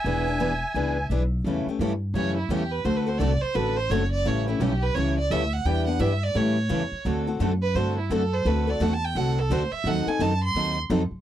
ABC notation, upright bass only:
X:1
M:4/4
L:1/8
Q:"Swing" 1/4=172
K:D
V:1 name="Upright bass" clef=bass
E,,,4 C,,2 B,,,2 | E,, z G,,2 F,,2 E,,2 | D,,2 =C,, z A,,,2 F,,,2 | A,,,2 B,,,2 C,,2 D,,2 |
E,,2 G,,2 A,,2 E,, z | D,,2 F,,2 G,,2 F,,2 | D,,2 E,,2 =C,,2 D,, z | ^D,, z F,,2 D,,2 =F,, z |]